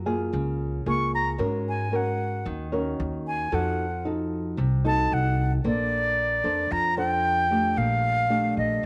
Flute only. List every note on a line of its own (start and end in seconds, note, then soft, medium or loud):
0.89 1.12 C#6 loud
1.15 1.30 A#5 medium
1.69 1.97 G#5 medium
1.96 2.47 F#5 medium
3.27 3.56 G#5 medium
3.55 4.06 F#5 medium
4.86 5.15 A5 loud
5.13 5.52 F#5 loud
5.67 6.73 D5 loud
6.72 6.97 A#5 loud
6.98 7.79 G5 loud
7.78 8.57 F5 loud
8.58 8.86 D#5 medium